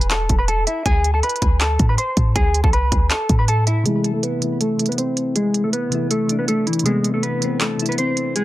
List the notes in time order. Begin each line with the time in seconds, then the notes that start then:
Already playing: E1
0.01 closed hi-hat
0.11 A4 A5, clap, closed hi-hat
0.29 E1, kick, closed hi-hat
0.39 B4 B5
0.48 A4 A5, closed hi-hat
0.67 E4 E5, closed hi-hat
0.86 D2 G#4 G#5, kick, closed hi-hat
1.04 closed hi-hat
1.14 A4 A5
1.23 B4 B5, closed hi-hat
1.29 closed hi-hat
1.36 closed hi-hat
1.42 D2, kick, closed hi-hat
1.61 A4 A5, clap, closed hi-hat
1.79 A2, kick, closed hi-hat
1.89 B4 B5
1.98 C5 C6, closed hi-hat
2.17 A2, kick, closed hi-hat
2.36 D2 G#4 G#5, kick, closed hi-hat
2.54 closed hi-hat
2.64 C2 A4 A5, kick
2.73 B4 B5, closed hi-hat
2.92 D2, kick, closed hi-hat
3.10 A4 A5, clap, closed hi-hat
3.29 A2, kick, closed hi-hat
3.39 B4 B5
3.48 A4 A5, closed hi-hat
3.67 E4 E5, closed hi-hat
3.83 C3 E3 G#3 A3 G#4, closed hi-hat
3.89 E4
4.04 closed hi-hat
4.14 A3 A4
4.23 B3 B4, closed hi-hat
4.39 C3 E3 A3, closed hi-hat
4.45 E4
4.61 A3 A4, closed hi-hat
4.77 C3 E3 A3, closed hi-hat
4.82 E4, closed hi-hat
4.89 B3 B4, closed hi-hat
4.98 C4 C5, closed hi-hat
5.17 closed hi-hat
5.36 G#3 G#4, closed hi-hat
5.54 closed hi-hat
5.64 A3 A4
5.73 B3 B4, closed hi-hat
5.89 C3 E3 A3, closed hi-hat
5.95 E4
6.11 A3 A4, closed hi-hat
6.26 C3 E3 A3, closed hi-hat
6.32 D4
6.39 B3 B4
6.48 A3 A4, closed hi-hat
6.67 E3 E4, closed hi-hat
6.73 closed hi-hat
6.79 C3, closed hi-hat
6.85 E3 G#3 A3 B3 G#4, closed hi-hat
7.04 closed hi-hat
7.14 A3 A4
7.23 B3 B4, closed hi-hat
7.39 C3 E3 A3, closed hi-hat
7.44 C4
7.61 A3 A4, clap, closed hi-hat
7.77 C3 E3 A3, closed hi-hat
7.82 E4, closed hi-hat
7.89 B3 B4, closed hi-hat
7.98 C4 C5, closed hi-hat
8.17 closed hi-hat
8.36 G#3 G#4, closed hi-hat